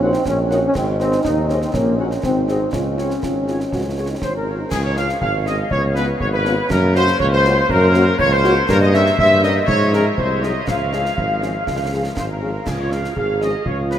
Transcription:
Already playing: A#1 D#4
0.01 C4 F#4 A#4 C#5
0.13 snare
0.26 A#1 C#4, concert bass drum, snare
0.49 D#4 F#4 A#4 C#5 F#5, snare
0.64 C#4
0.75 G#1 C4 D#4, concert bass drum, snare, crash
0.99 C4 G#4 C5 D#5, snare
1.12 snare
1.23 D#2 D#4, concert bass drum, snare
1.49 C#4 G#4 C5 D#5, snare
1.62 C4, snare
1.74 A#1 A#3 C#4, concert bass drum, snare
1.98 C#4 F#4 C#5 F#5
2.11 snare
2.23 G#1 C4 D#4, concert bass drum, snare
2.48 C4 F#4 G#4 D#5, snare
2.71 C#2 C#4 F4, concert bass drum, snare
2.98 F4 G#4 C#5, snare
3.10 snare
3.23 G#1 F4, concert bass drum, snare
3.48 F4 G#4 C#5, snare
3.60 snare
3.72 C#2 F#4, concert bass drum, snare
3.97 F4 G#4 C#5
4.10 D#4
4.22 G#1 C#4 C5, concert bass drum, snare
4.34 A#4
4.46 F4 G#4 C#5
4.60 D#4
4.70 C#2 C#3 G#3 G#4, concert bass drum, snare, crash
4.83 C#5
4.95 G#3 C#4 F4 F5, snare
5.09 snare
5.20 G#1 F5, concert bass drum
5.45 G#3 C#4 F4 D#5, snare
5.70 C#2 B3 C#5, concert bass drum
5.95 B3 C#4 F4 B4, snare
6.20 G#1 C#5, concert bass drum
6.32 B4
6.45 B3 C#4 F4, snare
6.70 F#2 C#3 A#3 A#4, concert bass drum, snare
6.94 A#3 C#4 F#4 C5, snare
7.07 snare
7.19 C#2 C#5, concert bass drum
7.32 C5
7.45 A#3 C#4 F#4, snare
7.69 F#2 A#4, concert bass drum
7.94 A#3 C#4 F#4, snare
8.18 C#2 C#5, concert bass drum
8.31 C5
8.43 A#3 C#4 F#4, snare
8.68 G2 C#3 A#3 A#4, concert bass drum, snare, crash
8.80 D#5
8.92 G3 C#4 A#4 E5, snare
9.06 snare
9.18 G2 E5, concert bass drum
9.42 G3 C#4 A#4 D#5, snare
9.67 G#2 F3 G#3 C#5, concert bass drum
9.93 F3 C#4 G#4 A#4, snare
10.17 C2 F#3 C5, concert bass drum
10.42 F#3 D#4 G#4 D#5, snare
10.67 C#2 F3 G#3 F5, concert bass drum, snare
10.93 F3 C#4 G#4, snare
11.05 snare
11.17 G#1, concert bass drum
11.42 F3 C#4 G#4, snare
11.67 C#2, concert bass drum, snare
11.92 F3 C#4 G#4
12.16 G#1 C5, concert bass drum, snare
12.29 A#4
12.42 F3 C#4 G#4
12.67 C#2 F4 G#4, concert bass drum, snare, crash
12.79 C#5
12.90 F3 G#3 C#4 G#4 F5, snare
13.04 snare
13.16 G#1 G#4 F5, concert bass drum
13.40 F3 G#3 C#4 G#4 D#5, snare
13.65 C#2 F4 C#5, concert bass drum
13.91 F3 B3 C#4 F4 B4, snare

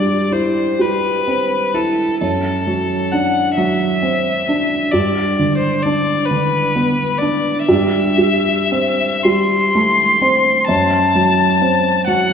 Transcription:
Already playing: G2 G3 D5
0.32 E4 C5
0.79 G3 B4
1.28 C4
1.74 E4 A4
2.20 F#2 A4
2.67 F#3
3.12 D4 F#5
3.57 F#3 E5
4.03 C4
4.49 D4
4.91 G2 D5
5.39 D3
5.58 C5
5.82 D4 D5
6.26 B4
6.31 D3
6.76 B3
7.18 D4 D5
7.65 E5
7.69 G2
8.18 G3
8.72 C4
9.24 G3 C6
9.75 A3
10.21 C4
10.68 F#2 A5
11.15 F#3
11.61 C4
12.07 F#3 F#5

